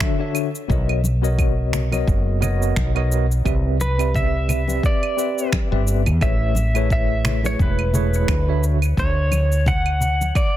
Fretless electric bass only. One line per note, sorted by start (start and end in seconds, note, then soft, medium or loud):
0.70 2.03 B1 loud
2.08 2.72 F#1 medium
2.77 3.41 B1 loud
3.46 4.79 C2 loud
5.72 6.08 G1 loud
6.06 6.18 E2 medium
6.21 7.55 A1 loud
7.59 8.24 E1 medium
8.28 8.93 D2 loud
8.97 10.31 D2 loud